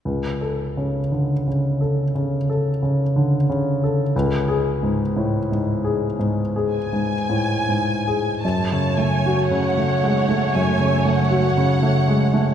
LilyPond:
<<
  \new Staff \with { instrumentName = "Violin section" } { \time 4/4 \key fis \minor \tempo 4 = 58 r1 | r2 r8 gis''4. | a''8 gis''8 fis''4 gis''8 fis''4. | }
  \new Staff \with { instrumentName = "Viola section" } { \time 4/4 \key fis \minor r1 | r1 | <a cis''>1 | }
  \new Staff \with { instrumentName = "Grand piano" } { \clef bass \time 4/4 \key fis \minor \tuplet 3/2 { cis,8 a'8 cis8 d8 cis8 a'8 cis8 a'8 cis8 d8 cis8 a'8 } | \tuplet 3/2 { cis,8 gis'8 gis,8 a,8 gis,8 gis'8 gis,8 gis'8 gis,8 a,8 gis,8 gis'8 } | fis,16 cis16 a16 fis'16 cis16 a16 gis16 a16 fis,16 cis16 a16 fis'16 cis16 a16 gis16 a16 | }
>>